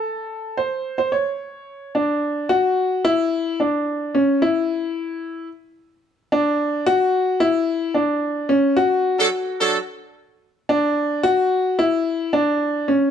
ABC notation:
X:1
M:4/4
L:1/16
Q:1/4=110
K:Am
V:1 name="Grand piano"
A4 c3 c _d6 =D2- | [K:F#phr] D2 F4 E4 D4 C2 | E8 z6 D2- | D2 F4 E4 D4 C2 |
F8 z6 D2- | D2 F4 E4 D4 C2 |]
V:2 name="Horn section"
z16 | [K:F#phr] z16 | z16 | z16 |
z3 [F,DA] z2 [F,DA]2 z8 | z16 |]